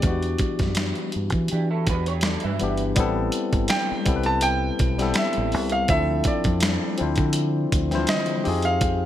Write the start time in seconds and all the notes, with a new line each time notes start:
Already playing: D5
0.02 E2 E3 F#3 B3 D4, kick, closed hi-hat
0.07 F#4 G4
0.23 closed hi-hat
0.38 kick, closed hi-hat
0.59 F#2, kick, snare, closed hi-hat
0.75 finger snap, snare, closed hi-hat
0.95 closed hi-hat
1.12 G2, closed hi-hat
1.30 E3, kick, closed hi-hat
1.48 G4, closed hi-hat
1.52 E3 D4
1.71 E4 A4
1.87 E2 F#4 B4, kick, closed hi-hat
2.06 G4 C#5, closed hi-hat
2.21 D5, finger snap, snare, closed hi-hat
2.26 A4
2.40 E5, closed hi-hat
2.45 G2 B4
2.59 G1 E3 G3 B3 D4, closed hi-hat
2.64 G4
2.77 closed hi-hat
2.96 A1 G3 B3 C4 E4, kick, closed hi-hat
3.00 A4
3.32 closed hi-hat
3.53 G1, kick, closed hi-hat
3.68 G5, finger snap, snare, closed hi-hat
3.92 muted fingered electric bass stroke
4.05 C2 G3 B3 C4 E4, kick, closed hi-hat
4.09 A4
4.16 B4
4.24 A5, closed hi-hat
4.41 G5, closed hi-hat
4.79 B1, kick, closed hi-hat
4.98 G3 B3 C4 E4, snare, closed hi-hat
5.02 A4
5.14 E5, finger snap, snare, closed hi-hat
5.33 closed hi-hat
5.38 A1
5.52 C2, open hi-hat
5.70 F5, closed hi-hat
5.88 D2 F3 C4 D4 E4 E5, kick, closed hi-hat
5.93 A4
6.24 D5, kick, closed hi-hat
6.44 F2, kick, closed hi-hat
6.60 finger snap, snare, closed hi-hat
6.98 D2 F3 C4 D4 E4, closed hi-hat
7.02 C5
7.16 D3, kick, closed hi-hat
7.33 closed hi-hat
7.72 D2, kick, closed hi-hat
7.91 D3 E3 C4 E4, snare, closed hi-hat
7.95 F3 C5
8.07 D#5, finger snap, snare, closed hi-hat
8.26 closed hi-hat
8.44 F2 C4 D#4 F4 G4, open hi-hat
8.49 G#4
8.62 F5, closed hi-hat
8.81 kick, closed hi-hat